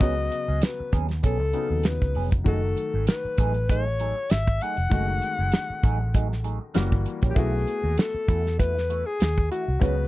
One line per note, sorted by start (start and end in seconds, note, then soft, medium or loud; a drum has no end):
0.00 0.28 C#2 medium
0.00 1.50 C#3 medium
0.00 1.50 F#3 medium
0.00 0.19 F#3 medium
0.00 1.51 B3 medium
0.00 0.17 B3 medium
0.00 0.16 C#4 medium
0.00 1.51 F#4 medium
0.00 0.16 G#4 medium
0.00 0.65 D#5 medium
0.00 kick loud
0.00 closed hi-hat medium
0.17 muted clean electric guitar stroke soft
0.32 muted clean electric guitar stroke soft
0.32 closed hi-hat medium
0.48 0.61 C#2 medium
0.48 0.61 F#3 soft
0.48 0.61 B3 soft
0.48 0.61 C#4 soft
0.48 0.61 G#4 medium
0.61 0.97 B4 medium
0.61 snare loud
0.61 closed hi-hat medium
0.79 muted clean electric guitar stroke soft
0.79 muted fingered electric bass stroke soft
0.92 1.20 D#2 medium
0.92 1.12 F#3 medium
0.92 1.09 B3 medium
0.92 1.08 C#4 medium
0.92 1.08 G#4 medium
0.92 kick medium
0.92 closed hi-hat medium
1.09 muted clean electric guitar stroke soft
1.09 snare soft
1.09 closed hi-hat soft
1.23 1.39 B1 medium
1.23 1.42 F#3 medium
1.23 1.39 B3 medium
1.23 1.39 C#4 medium
1.23 1.39 G#4 medium
1.23 1.88 A4 medium
1.23 kick medium
1.23 closed hi-hat medium
1.39 1.52 C#2 medium
1.39 muted clean electric guitar stroke soft
1.53 2.46 C#3 soft
1.53 1.69 F#3 soft
1.53 2.44 F#3 soft
1.53 1.69 B3 soft
1.53 2.46 B3 soft
1.53 1.69 C#4 medium
1.53 2.46 D#4 soft
1.53 1.69 G#4 soft
1.53 closed hi-hat medium
1.70 1.98 D#2 medium
1.83 2.33 B4 medium
1.83 muted clean electric guitar stroke soft
1.83 snare loud
1.83 closed hi-hat medium
2.02 2.14 C#2 medium
2.02 kick medium
2.15 2.43 F1 medium
2.15 2.30 F#3 medium
2.15 2.30 B3 medium
2.15 2.30 C#4 medium
2.15 2.31 G#4 medium
2.15 open hi-hat medium
2.31 muted clean electric guitar stroke soft
2.31 kick medium
2.31 closed hi-hat soft
2.44 2.73 F#1 medium
2.44 4.86 D#3 medium
2.44 4.87 F#3 medium
2.44 2.65 F#3 medium
2.44 4.87 A3 medium
2.44 2.63 A3 medium
2.44 2.63 D#4 medium
2.44 4.88 F#4 medium
2.44 2.62 G#4 medium
2.44 3.04 A4 medium
2.44 kick medium
2.44 closed hi-hat medium
2.63 muted clean electric guitar stroke soft
2.77 muted clean electric guitar stroke soft
2.77 closed hi-hat medium
2.94 3.06 G#1 medium
2.94 3.07 F#3 soft
2.94 3.07 A3 soft
2.94 3.06 D#4 soft
2.94 3.06 G#4 soft
3.07 3.71 B4 medium
3.07 snare medium
3.07 closed hi-hat medium
3.25 muted fingered electric bass stroke soft
3.25 muted clean electric guitar stroke soft
3.38 4.12 A1 medium
3.38 3.57 F#3 medium
3.38 3.55 A3 medium
3.38 3.55 D#4 medium
3.38 3.54 G#4 medium
3.38 kick medium
3.38 closed hi-hat medium
3.54 muted clean electric guitar stroke soft
3.54 closed hi-hat soft
3.69 3.88 F#3 medium
3.69 3.86 A3 medium
3.69 3.86 D#4 medium
3.69 3.85 G#4 medium
3.69 4.33 C#5 medium
3.69 kick medium
3.69 closed hi-hat medium
3.87 muted clean electric guitar stroke soft
3.99 4.14 F#3 medium
3.99 4.15 A3 medium
3.99 4.15 D#4 medium
3.99 4.15 G#4 medium
3.99 closed hi-hat medium
4.30 4.58 G#1 medium
4.30 4.64 E5 loud
4.30 snare medium
4.30 closed hi-hat medium
4.47 kick medium
4.61 4.76 F#3 medium
4.61 4.76 A3 medium
4.61 4.76 D#4 medium
4.61 4.76 G#4 medium
4.61 6.45 F#5 loud
4.61 closed hi-hat medium
4.77 4.90 F1 medium
4.77 muted clean electric guitar stroke soft
4.77 closed hi-hat soft
4.90 5.19 F#1 medium
4.90 6.71 D#3 medium
4.90 5.10 F#3 medium
4.90 6.71 G#3 medium
4.90 6.71 A3 medium
4.90 5.08 A3 medium
4.90 5.08 D#4 medium
4.90 6.72 F#4 medium
4.90 5.07 G#4 medium
4.90 kick loud
4.90 closed hi-hat medium
5.09 muted clean electric guitar stroke soft
5.22 muted clean electric guitar stroke soft
5.22 closed hi-hat medium
5.39 5.51 F#1 medium
5.39 5.52 F#3 soft
5.39 5.52 A3 soft
5.39 5.52 D#4 medium
5.39 5.52 G#4 medium
5.52 snare loud
5.52 closed hi-hat medium
5.70 muted clean electric guitar stroke soft
5.70 muted fingered electric bass stroke soft
5.83 6.57 A1 medium
5.83 6.02 F#3 medium
5.83 6.00 A3 medium
5.83 6.00 D#4 medium
5.83 6.00 G#4 medium
5.83 kick medium
5.83 closed hi-hat medium
6.01 muted clean electric guitar stroke soft
6.14 6.33 F#3 medium
6.14 6.30 A3 medium
6.14 6.29 D#4 medium
6.14 6.29 G#4 medium
6.14 kick medium
6.14 closed hi-hat medium
6.30 muted clean electric guitar stroke soft
6.30 snare soft
6.44 6.59 F#3 soft
6.44 6.59 A3 soft
6.44 6.59 D#4 medium
6.44 6.59 G#4 medium
6.44 closed hi-hat medium
6.61 muted clean electric guitar stroke soft
6.74 6.92 F#1 medium
6.74 6.93 E3 medium
6.74 7.36 E3 medium
6.74 7.36 G3 medium
6.74 6.93 A#3 medium
6.74 7.37 A#3 medium
6.74 6.93 C#4 medium
6.74 7.35 F#4 medium
6.74 6.94 G4 medium
6.74 snare medium
6.74 closed hi-hat medium
6.92 7.04 G1 medium
6.92 kick medium
7.06 muted clean electric guitar stroke soft
7.06 closed hi-hat medium
7.22 7.35 A#1 medium
7.22 7.35 E3 soft
7.22 7.35 A#3 soft
7.22 7.35 C#4 soft
7.22 7.35 G4 medium
7.22 kick medium
7.22 closed hi-hat soft
7.30 7.38 G4 medium
7.34 7.64 B1 medium
7.34 7.55 E3 medium
7.34 9.77 A3 medium
7.34 7.53 A3 medium
7.34 9.78 B3 medium
7.34 9.77 E4 medium
7.34 7.53 E4 medium
7.34 9.78 F#4 medium
7.34 7.53 F#4 medium
7.34 8.00 G#4 medium
7.34 kick medium
7.34 closed hi-hat medium
7.54 muted clean electric guitar stroke soft
7.67 muted clean electric guitar stroke soft
7.67 closed hi-hat medium
7.84 7.96 D#2 medium
7.84 7.97 E3 soft
7.84 7.97 A3 soft
7.84 7.97 E4 soft
7.84 7.96 F#4 soft
7.97 8.59 A4 medium
7.97 snare loud
7.97 closed hi-hat medium
8.14 muted clean electric guitar stroke soft
8.14 muted fingered electric bass stroke soft
8.28 9.02 E2 medium
8.28 8.47 E3 medium
8.28 8.45 A3 medium
8.28 8.44 E4 medium
8.28 8.44 F#4 medium
8.28 kick medium
8.28 closed hi-hat medium
8.45 muted clean electric guitar stroke soft
8.45 snare soft
8.58 8.77 E3 medium
8.58 8.75 A3 medium
8.58 8.74 E4 medium
8.58 8.74 F#4 medium
8.58 9.08 B4 loud
8.58 kick medium
8.58 closed hi-hat medium
8.75 muted clean electric guitar stroke soft
8.75 snare soft
8.89 9.04 E3 medium
8.89 9.04 A3 medium
8.89 9.05 E4 medium
8.89 9.05 F#4 medium
8.89 closed hi-hat medium
9.06 9.51 G#4 medium
9.06 muted clean electric guitar stroke soft
9.20 9.48 D#2 medium
9.20 muted clean electric guitar stroke soft
9.20 snare medium
9.20 closed hi-hat medium
9.38 kick medium
9.51 9.66 E3 medium
9.51 9.66 A3 medium
9.51 9.66 E4 medium
9.51 9.84 F#4 medium
9.51 9.66 F#4 medium
9.51 closed hi-hat medium
9.67 9.80 C2 medium
9.67 muted clean electric guitar stroke soft
9.80 10.08 C#3 medium
9.80 10.00 F#3 medium
9.80 10.08 G#3 medium
9.80 9.98 B3 medium
9.80 10.08 B3 medium
9.80 9.97 C#4 medium
9.80 9.97 F#4 medium
9.80 10.08 F#4 medium
9.80 10.08 B4 medium
9.80 kick medium
9.80 closed hi-hat medium
9.98 muted clean electric guitar stroke soft